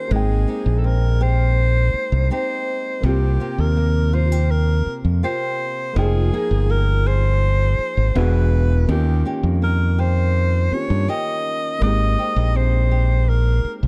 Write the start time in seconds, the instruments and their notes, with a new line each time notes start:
Already playing: nylon-string guitar D#3 A#3 C#4 G4, felt piano A#3 C#4 F4 G4, alto saxophone C5
0.08 fingered electric bass G#1, nylon-string guitar G#3, felt piano A#3 C4
0.13 felt piano D#4 G5, alto saxophone G#4
0.47 nylon-string guitar C4 D#4 G4
0.66 fingered electric bass A#1
0.79 alto saxophone A4
0.84 nylon-string guitar C4, alto saxophone A#4
1.21 nylon-string guitar G4, alto saxophone C5
1.94 muted fingered electric bass stroke
2.12 fingered electric bass C2
2.31 nylon-string guitar C4 D#4 G4, alto saxophone C5
3.01 fingered electric bass C2, nylon-string guitar C3, felt piano A#3 C4
3.05 felt piano F4 G4, alto saxophone G4
3.40 nylon-string guitar A#3 F4 G4
3.58 fingered electric bass D#2, alto saxophone A#4
3.77 nylon-string guitar A#3
4.13 nylon-string guitar F4, alto saxophone C5
4.32 nylon-string guitar G4
4.51 alto saxophone A#4
4.86 muted fingered electric bass stroke
5.05 fingered electric bass F2
5.23 nylon-string guitar A#3 F4 G4, alto saxophone C5
5.93 fingered electric bass F1, nylon-string guitar F3, felt piano A#3 D#4
5.98 alto saxophone G#4, felt piano G#4 G5
6.33 nylon-string guitar A#3 D#4 G#4
6.51 fingered electric bass G1
6.69 nylon-string guitar A#3, alto saxophone A#4
7.06 nylon-string guitar G#4, alto saxophone C5
7.79 muted fingered electric bass stroke
7.97 fingered electric bass G#1
8.15 fingered electric bass E1, nylon-string guitar E3, felt piano B3 D4 F#4 G#4, alto saxophone B4
8.86 fingered electric bass D#2, nylon-string guitar D#3, felt piano A#3 C#4
8.90 felt piano F4 G4, alto saxophone G4
9.25 nylon-string guitar A#3 C#4 G4
9.43 fingered electric bass F2
9.62 nylon-string guitar A#3, alto saxophone A#4
9.99 nylon-string guitar G4, alto saxophone C5
10.70 felt piano A#3 C#4 F4, alto saxophone C#5, muted fingered electric bass stroke
10.75 felt piano G4
10.90 fingered electric bass G2
11.08 nylon-string guitar A#3 C#4 G4, alto saxophone D#5
11.79 fingered electric bass G#1, nylon-string guitar G#3, felt piano A#3 C4
11.83 felt piano D#4 G4, alto saxophone D#5
12.18 nylon-string guitar C4 D#4 G4
12.36 fingered electric bass A#1
12.55 nylon-string guitar C4, alto saxophone C5
12.91 nylon-string guitar G4
13.29 alto saxophone A#4
13.65 muted fingered electric bass stroke
13.83 fingered electric bass C2